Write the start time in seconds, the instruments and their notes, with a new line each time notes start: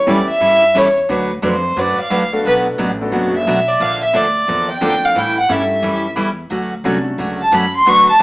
Already playing: fiddle C#5
0.06 upright bass F#2, steel-string acoustic guitar E3 G3 C#4 E4 A4, upright piano A3 B3 C#4 E4 G4, fiddle D5
0.28 fiddle E5, muted upright bass stroke
0.40 upright bass G2, steel-string acoustic guitar E3 G3 C#4 E4 A4
0.75 upright bass E2, steel-string acoustic guitar E3 G3 C#4 E4 A4, fiddle C#5
1.09 upright bass D2, steel-string acoustic guitar D3 F#3 A3 D4 F#4 B4
1.42 upright bass F2, steel-string acoustic guitar D3 F#3 A3 D4 F#4 B4, fiddle C5
1.76 upright bass F#2, steel-string acoustic guitar D3 F#3 A3 D4 F#4 B4, fiddle D5
1.98 fiddle F5, muted upright bass stroke
2.10 upright bass D2, steel-string acoustic guitar D3 F#3 A3 D4 F#4 B4
2.32 upright piano A3 B3 D4 F#4 A4
2.45 upright bass B1, steel-string acoustic guitar B2 F#3 A3 D4 F#4, fiddle B4
2.78 upright bass A1, steel-string acoustic guitar B2 F#3 A3 D4 F#4
3.01 upright piano A3 B3 D4 F#4 A4
3.12 upright bass F#1, steel-string acoustic guitar B2 F#3 A3 D4 F#4
3.35 fiddle E5
3.46 upright bass B1, steel-string acoustic guitar B2 F#3 A3 D4 F#4
3.68 fiddle D5
3.80 upright bass A#1, steel-string acoustic guitar D3 F3 A#3 D4 A4, fiddle F5
4.03 fiddle E5
4.13 upright bass D2, steel-string acoustic guitar D3 F3 A#3 D4 A4, fiddle D5
4.48 upright bass E2, steel-string acoustic guitar D3 F3 A#3 D4 A4
4.70 fiddle G5
4.81 upright bass F2, steel-string acoustic guitar D3 F3 A#3 D4 A4, upright piano A3 A#3 D4 F4 A4
5.05 fiddle F5
5.15 upright bass A2, steel-string acoustic guitar E3 G3 C#4 E4 A4, fiddle G5
5.40 fiddle F#5
5.49 upright bass G2, steel-string acoustic guitar E3 G3 C#4 E4 A4, upright piano A3 C#4 E4 G4 A4, fiddle E5
5.82 upright bass F#2, steel-string acoustic guitar E3 G3 C#4 E4 A4
6.16 upright bass E2, steel-string acoustic guitar E3 G3 C#4 E4 A4
6.50 upright bass D2, steel-string acoustic guitar D3 F#3 A3 C#4 F#4
6.84 upright bass C2, steel-string acoustic guitar D3 F#3 A3 C#4 F#4, upright piano A3 C#4 D4 F#4 A4
7.18 upright bass C#2, steel-string acoustic guitar D3 F#3 A3 C#4 F#4
7.41 fiddle A5
7.52 upright bass F#2, steel-string acoustic guitar D3 F#3 A3 C#4 F#4, fiddle B5
7.76 fiddle C6
7.86 upright bass D2, steel-string acoustic guitar D3 F#3 A3 D4 F#4 B4, fiddle C#6
8.09 fiddle A5
8.19 steel-string acoustic guitar D3